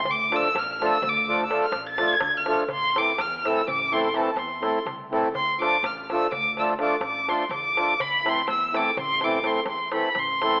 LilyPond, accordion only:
\new Staff \with { instrumentName = "Accordion" } { \time 11/8 \key d \minor \tempo 4 = 124 r8 <f a d' f' a'>8 r8 <f a d' f' a'>8 r8 <f a d' f' a'>8 <f a d' f' a'>8 r8 <f a d' f' a'>8 r8 <f a d' f' a'>8 | r8 <e a c' e' a'>8 r8 <e a c' e' a'>8 r8 <e a c' e' a'>8 <e a c' e' a'>8 r8 <e a c' e' a'>8 r8 <e a c' e' a'>8 | r8 <f a d' f' a'>8 r8 <f a d' f' a'>8 r8 <f a d' f' a'>8 <f a d' f' a'>8 r8 <f a d' f' a'>8 r8 <f a d' f' a'>8 | r8 <e a c' e' a'>8 r8 <e a c' e' a'>8 r8 <e a c' e' a'>8 <e a c' e' a'>8 r8 <e a c' e' a'>8 r8 <e a c' e' a'>8 | }